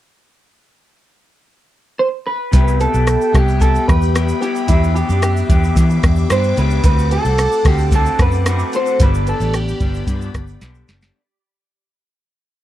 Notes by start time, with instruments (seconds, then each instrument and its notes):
1.99 clean electric guitar C5
2.27 clean electric guitar B4
2.51 fingered electric bass C2, clean electric guitar C3 G3 B3 E4 G4 B4, analog synth pad G4 E5 G5 B5, kick, closed hi-hat, shaker
2.68 shaker
2.80 clean electric guitar A4, closed hi-hat, shaker
2.92 fingered electric bass B1, clean electric guitar B3 E4 G4, shaker
3.07 cross-stick, closed hi-hat, shaker
3.21 shaker
3.33 fingered electric bass C2, clean electric guitar G3 B3 E4 G4, kick, cross-stick, closed hi-hat, shaker
3.48 shaker
3.59 clean electric guitar G3 B3 E4 G4 A4, kick, closed hi-hat, shaker
3.75 shaker
3.88 fingered electric bass E2, clean electric guitar B4, kick, cross-stick, closed hi-hat, shaker
4.01 shaker
4.14 clean electric guitar G3 B3 E4 G4, cross-stick, closed hi-hat, shaker
4.28 shaker
4.40 clean electric guitar G3 B3 E4 G4, closed hi-hat, shaker
4.55 shaker
4.67 fingered electric bass E2, clean electric guitar E3 B3 D4 E4 G4, analog synth pad D6, kick, closed hi-hat, shaker
4.83 shaker
4.95 clean electric guitar G4, closed hi-hat, shaker
5.07 fingered electric bass F#2, clean electric guitar B3 D4 G4, shaker
5.22 clean electric guitar G4, cross-stick, closed hi-hat, shaker
5.37 shaker
5.47 fingered electric bass E2, clean electric guitar E3 B3 D4 G4, kick, closed hi-hat, shaker
5.63 shaker
5.75 clean electric guitar E3 B3 D4 G4, fingered electric bass E3, kick, closed hi-hat, shaker
5.90 shaker
6.03 fingered electric bass E2, kick, cross-stick, closed hi-hat, shaker
6.16 shaker
6.18 shaker
6.28 fingered electric bass G2, clean electric guitar E3 B3 D4 G4 C5, cross-stick, closed hi-hat, shaker
6.43 shaker
6.56 fingered electric bass C#2, clean electric guitar E3 B3 D4 G4 B4, closed hi-hat, shaker
6.70 shaker
6.83 fingered electric bass D2, clean electric guitar D3 A3 C4 F#4 B4, analog synth pad A4 F#5 A5, kick, closed hi-hat, shaker
6.99 shaker
7.11 clean electric guitar A4, closed hi-hat, shaker
7.23 fingered electric bass C2, clean electric guitar A3 C4 F#4, shaker
7.38 cross-stick, closed hi-hat, shaker
7.52 shaker
7.64 fingered electric bass D2, clean electric guitar D3 A3 C4 F#4 G4, kick, cross-stick, closed hi-hat, shaker
7.78 shaker
7.80 shaker
7.91 clean electric guitar D3 A3 C4 F#4, kick, closed hi-hat, shaker
7.96 clean electric guitar A4
8.06 shaker
8.19 fingered electric bass F#2, clean electric guitar B4, kick, cross-stick, closed hi-hat, shaker
8.31 shaker
8.34 shaker
8.46 clean electric guitar D3 A3 C4 F#4, cross-stick, closed hi-hat, shaker
8.59 shaker
8.72 clean electric guitar D3 A3 C4 F#4 C5, closed hi-hat, shaker
8.86 shaker
8.99 fingered electric bass G1, clean electric guitar G2 D3 G3 B3 D4 B4, analog synth pad G4 D5 B5, kick, closed hi-hat, shaker
9.14 shaker
9.27 clean electric guitar A4, closed hi-hat, shaker
9.40 fingered electric bass A1, clean electric guitar G3 B3 D4, shaker
9.54 clean electric guitar G4, cross-stick, closed hi-hat, shaker
9.68 shaker
9.80 fingered electric bass G1, clean electric guitar D3 G3 B3 D4, kick, closed hi-hat, shaker
9.94 shaker
9.96 shaker
10.07 fingered electric bass G2, clean electric guitar D3 G3 B3 D4, kick, closed hi-hat, shaker
10.21 shaker
10.34 fingered electric bass G1, kick, cross-stick, closed hi-hat, shaker
10.47 shaker
10.49 shaker
10.61 fingered electric bass B1, clean electric guitar D3 G3 B3 D4, snare, closed hi-hat, shaker
10.75 shaker
10.88 fingered electric bass F#1, clean electric guitar D3 G3 B3 D4, snare, closed hi-hat, shaker
11.01 snare, shaker